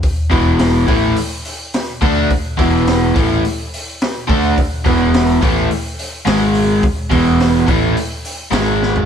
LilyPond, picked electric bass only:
\new Staff \with { instrumentName = "Picked electric bass" } { \clef bass \time 4/4 \key e \mixolydian \tempo 4 = 106 r8 e,,4 a,,8 r4. d,8 | r8 e,,4 a,,8 r4. d,8 | r8 e,,4 a,,8 r4 gis,,4 | r8 e,,4 a,,8 r4 gis,,4 | }